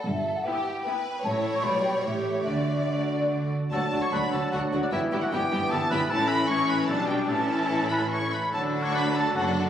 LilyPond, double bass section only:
\new Staff \with { instrumentName = "Double bass section" } { \clef bass \time 3/4 \key d \major \tempo 4 = 149 g,,4 r2 | a,,4 b,,4 a,,4 | d,4 r2 | d,8 d,8 d,8 d,8 d,8 d,8 |
g,,8 g,,8 g,,8 g,,8 g,,8 g,,8 | a,,2 b,,4 | a,,2~ a,,8 r8 | d,2 fis,,4 | }